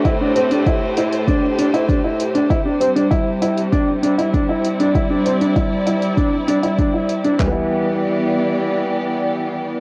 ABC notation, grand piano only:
X:1
M:4/4
L:1/16
Q:1/4=98
K:Em
V:1 name="Grand piano"
E D C D E2 E2 D2 D E D E2 D | E D C D E2 E2 D2 D E D E2 D | E D C D E2 E2 D2 D E D E2 D | [E,G,B,E]16 |]